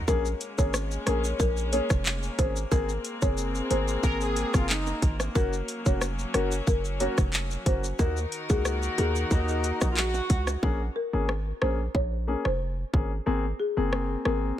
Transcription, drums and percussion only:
0.08 kick, shaker, maracas
0.25 shaker, maracas
0.41 closed hi-hat, shaker, maracas
0.58 kick, maracas, shaker
0.74 cross-stick, maracas, shaker
0.91 maracas, shaker
1.07 cross-stick, closed hi-hat, shaker
1.24 maracas, shaker
1.40 kick, shaker, maracas
1.57 maracas, shaker
1.73 closed hi-hat, maracas, shaker
1.90 kick, cross-stick, maracas, shaker
2.06 clap, shaker, maracas
2.23 maracas, shaker
2.39 kick, closed hi-hat, shaker
2.56 maracas, shaker
2.71 kick, shaker, maracas
2.89 shaker, maracas
3.05 closed hi-hat, shaker, maracas
3.22 kick, maracas, shaker
3.37 maracas, shaker
3.55 maracas, shaker
3.71 closed hi-hat, shaker
3.88 maracas, shaker
4.03 kick, shaker, maracas
4.21 shaker, maracas
4.36 closed hi-hat, maracas, shaker
4.54 kick, cross-stick, maracas, shaker
4.69 clap, shaker, maracas
4.87 high timbale, maracas, shaker
5.02 kick, closed hi-hat, shaker
5.20 cross-stick, high timbale, shaker, maracas
5.35 kick, shaker, maracas
5.53 shaker, maracas
5.68 closed hi-hat, shaker, maracas
5.86 kick, maracas, shaker
6.01 cross-stick, maracas, shaker
6.19 maracas, shaker
6.34 cross-stick, closed hi-hat, shaker
6.52 maracas, shaker
6.67 kick, shaker, maracas
6.85 shaker, maracas
7.00 closed hi-hat, maracas, shaker
7.17 kick, cross-stick, maracas, shaker
7.33 clap, shaker, maracas
7.51 maracas, shaker
7.66 kick, closed hi-hat, shaker
7.84 shaker, maracas
7.99 kick, shaker, maracas
8.17 shaker, maracas
8.32 closed hi-hat, shaker, maracas
8.49 kick, maracas, shaker
8.65 cross-stick, maracas, shaker
8.82 maracas, shaker
8.98 closed hi-hat, shaker
9.15 maracas, shaker
9.31 kick, shaker, maracas
9.48 maracas, shaker
9.64 closed hi-hat, maracas, shaker
9.81 kick, cross-stick, maracas, shaker
9.97 clap, shaker, maracas
10.14 high timbale, maracas, shaker
10.30 kick, closed hi-hat, shaker
10.47 cross-stick, high timbale, maracas, shaker
10.63 kick
11.29 cross-stick
11.62 cross-stick
11.95 kick
12.45 cross-stick
12.94 kick
13.93 cross-stick
14.25 cross-stick

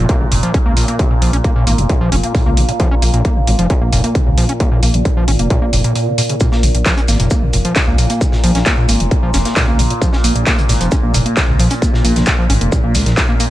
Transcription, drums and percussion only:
0.09 kick, closed hi-hat
0.32 open hi-hat
0.43 closed hi-hat
0.54 kick, closed hi-hat
0.77 open hi-hat
0.88 closed hi-hat
0.99 kick, closed hi-hat
1.22 open hi-hat
1.33 closed hi-hat
1.44 kick, closed hi-hat
1.67 open hi-hat
1.78 closed hi-hat
1.90 kick, closed hi-hat
2.12 open hi-hat
2.23 closed hi-hat
2.35 kick, open hi-hat
2.57 open hi-hat
2.69 closed hi-hat
2.80 kick, closed hi-hat
3.02 open hi-hat
3.14 closed hi-hat
3.25 kick, closed hi-hat
3.47 open hi-hat
3.59 closed hi-hat
3.70 kick, closed hi-hat
3.93 open hi-hat
4.04 closed hi-hat
4.15 kick, closed hi-hat
4.38 open hi-hat
4.49 closed hi-hat
4.60 kick, closed hi-hat
4.83 open hi-hat
4.94 closed hi-hat
5.05 kick, closed hi-hat
5.28 open hi-hat
5.39 closed hi-hat
5.50 kick, closed hi-hat
5.73 open hi-hat
5.84 closed hi-hat
5.95 open hi-hat
6.18 open hi-hat
6.29 closed hi-hat
6.40 kick, closed hi-hat, shaker
6.52 snare
6.63 open hi-hat, shaker
6.75 closed hi-hat
6.86 kick, snare, clap, closed hi-hat, shaker
6.97 closed hi-hat
7.08 snare, open hi-hat, shaker
7.20 closed hi-hat
7.30 kick, closed hi-hat, shaker
7.53 open hi-hat, shaker
7.65 closed hi-hat
7.75 kick, snare, clap, closed hi-hat, shaker
7.98 open hi-hat, shaker
8.10 closed hi-hat
8.21 kick, closed hi-hat, shaker
8.32 snare
8.44 open hi-hat, shaker
8.55 snare, closed hi-hat
8.66 kick, snare, clap, closed hi-hat, shaker
8.89 open hi-hat, shaker
9.00 closed hi-hat
9.11 kick, closed hi-hat
9.34 snare, open hi-hat, shaker
9.45 snare, closed hi-hat
9.56 kick, snare, clap, open hi-hat, shaker
9.79 open hi-hat, shaker
9.90 closed hi-hat
10.02 kick, closed hi-hat, shaker
10.13 snare
10.24 open hi-hat, shaker
10.36 closed hi-hat
10.47 kick, snare, clap, closed hi-hat, shaker
10.59 closed hi-hat
10.69 snare, open hi-hat, shaker
10.81 closed hi-hat
10.91 kick, closed hi-hat, shaker
11.14 open hi-hat, shaker
11.26 closed hi-hat
11.37 kick, snare, clap, closed hi-hat, shaker
11.59 open hi-hat, shaker
11.70 closed hi-hat
11.82 kick, closed hi-hat, shaker
11.94 snare
12.05 open hi-hat, shaker
12.16 snare, closed hi-hat
12.26 kick, snare, clap, closed hi-hat, shaker
12.50 open hi-hat
12.61 closed hi-hat
12.72 kick, closed hi-hat, shaker
12.95 snare, open hi-hat, shaker
13.06 snare, closed hi-hat
13.17 kick, snare, clap, open hi-hat, shaker
13.40 open hi-hat, shaker

